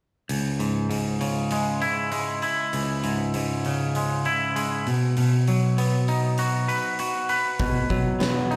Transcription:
0.29 C#2, open hi-hat
0.59 G#2, open hi-hat
0.90 G#2, open hi-hat
1.21 C#3, open hi-hat
1.51 G#3, open hi-hat
1.82 E4, open hi-hat
2.12 G#3, open hi-hat
2.42 E4, open hi-hat
2.73 C#2, open hi-hat
3.04 G#2, open hi-hat
3.34 G#2, open hi-hat
3.65 C#3, open hi-hat
3.95 G#3, open hi-hat
4.25 E4, open hi-hat
4.56 G#3, open hi-hat
4.87 B2, open hi-hat
5.17 B2, open hi-hat
5.48 F#3, open hi-hat
5.78 B3, open hi-hat
6.08 D#4, open hi-hat
6.38 F#4, open hi-hat
6.68 B4, open hi-hat
6.99 F#4, open hi-hat
7.29 B4, open hi-hat
7.59 B2, kick, open hi-hat
7.90 F#3, kick, open hi-hat
8.20 B3, snare, open hi-hat
8.51 D#4, open hi-hat

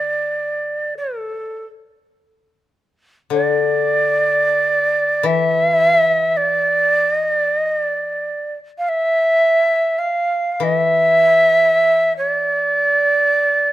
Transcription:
Already playing: D3 D5
0.98 A4
3.30 D3 D5
5.23 E3 E5
6.37 D5
7.14 D#5
7.35 D5
7.58 D#5
7.79 D5
8.78 F5
8.89 E5
9.99 F5
10.52 F5
10.60 E3 E5
12.17 D5

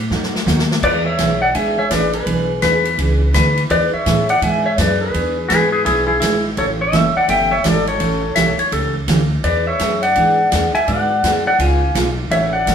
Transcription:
0.10 F#2 B2 F#3 A3 D#4 F#4, snare
0.23 snare
0.35 snare
0.46 D#2 B2 F#3 A3 D#4 F#4, snare, hi-hat pedal
0.59 snare
0.71 snare
0.83 E2 E3 B3 D4 G#4 B4 D5, kick, crash
1.06 C#5 E5
1.19 B1 E3 B3 D4 G#4, snare, hi-hat pedal, ride
1.42 D5 F#5
1.54 G#1 E3 B3 D4 G#4 E5 G#5, ride
1.79 C#5 E5
1.90 A1 E3 B3 D4 G#4 B4 D5, snare, hi-hat pedal, ride
2.13 G#4 B4, ride
2.26 B1 E3 B3 D4 G#4, ride
2.62 E2 E3 B3 D4 G#4 B4, snare, hi-hat pedal, ride
2.85 ride
2.98 C#2 E3 B3 D4 G#4, ride
3.33 D2 E3 B3 D4 G#4 B4, snare, hi-hat pedal, ride
3.57 ride
3.70 E2 E3 B3 D4 G#4 B4 D5, ride
3.93 C#5 E5, muted upright bass stroke
4.06 A2 E3 B3 D4 G#4, snare, hi-hat pedal, ride
4.29 D5 F#5, ride
4.42 G#2 E3 B3 D4 G#4 E5 G#5, ride
4.66 C#5 E5
4.78 F#2 E3 B3 D4 G#4 B4 D5, snare, hi-hat pedal, ride
5.01 G#4 B4
5.14 E2 E3 B3 D4 G#4, ride
5.49 G#2 E3 B3 D4 G#4 B4, snare, hi-hat pedal, ride
5.72 G#4 B4
5.85 B1 E3 B3 D4 E4 G#4, ride
6.07 E4 G#4
6.20 G#1 E3 B3 D4 E4 G#4, snare, hi-hat pedal, ride
6.57 A1 C#3 E3 A3 C#4 G4 A4 C#5, ride
6.81 C#5 E5
6.92 F#1 C#3 E3 A3 C#4 G4, snare, hi-hat pedal, ride
7.15 D5 F#5, muted upright bass stroke
7.28 G1 C#3 E3 A3 C#4 G4 E5 G5, ride
7.51 C#5 E5
7.63 G#1 C#3 E3 A3 C#4 G4 A4 D5, snare, hi-hat pedal, ride
7.87 A4 C#5, ride
7.99 A1 C#3 E3 A3 C#4 G4, ride
8.36 B1 C#3 E3 A3 C#4 G4 E5, snare, hi-hat pedal, ride
8.59 C#5, muted upright bass stroke, ride
8.72 C#2 C#3 E3 A3 C#4 G4 A4, ride
9.08 D2 C#3 E3 A3 C#4 G4, snare, hi-hat pedal, ride
9.43 E2 E3 B3 D4 G#4 B4 D5, ride
9.67 C#5 E5
9.79 F#2 E3 B3 D4 G#4, snare, hi-hat pedal, ride
10.03 D5 F#5, ride
10.16 G#2 E3 B3 D4 G#4, ride
10.52 E2 E3 B3 D4 G#4, snare, hi-hat pedal, ride
10.75 E5 G#5, muted upright bass stroke, ride
10.88 G#2 D3 F#3 B3 F#4 G#4 D5 F#5, ride
11.23 F#2 D3 F#3 B3 F#4 G#4, snare, hi-hat pedal, ride
11.47 D5 F#5
11.58 C#2 C#3 G#3 B3 F4 G#4 F5 G#5, ride
11.94 B1 C#3 G#3 B3 F4 G#4, snare, hi-hat pedal, ride
12.31 A1 C#3 E3 A3 C#4 F#4 C#5 E5, ride
12.53 D5 F#5
12.66 G#1 C#3 E3 A3 C#4 F#4, snare, hi-hat pedal, ride

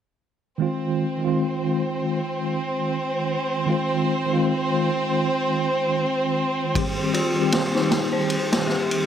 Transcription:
0.58 D#3 G#3 C4 F4 C5
1.17 D#3 G#3
1.22 C4 F4
3.66 D#3 G#3 C4 F4
4.26 D#3 G#3
4.31 C4 F4
6.74 D#3 G3 C4 G4, kick, ride
7.14 F4, ride
7.33 D#3 G3
7.38 C4 G4
7.52 snare, ride
7.75 D#4, snare
7.91 snare, ride
8.13 C5
8.30 ride
8.53 snare, ride
8.67 G4, snare
8.91 ride

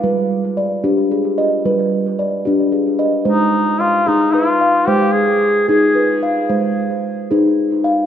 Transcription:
Already playing: F5
0.03 G3 B4
0.57 D5
0.84 D4 G4
1.12 G#4
1.38 D#5
1.65 G3 B4
2.19 D5
2.45 D4 G4
2.72 G#4
2.99 D#5
3.25 G#3 D#4 C5
3.80 F4 F5
4.07 D#4 G#4
4.33 F4 B4
4.61 F5
4.87 G#3 G4 C5
5.13 G#4
5.68 D#4 G#4
5.95 B4
6.23 F5
6.49 G#3 C5
7.31 D#4 G#4
7.84 F5

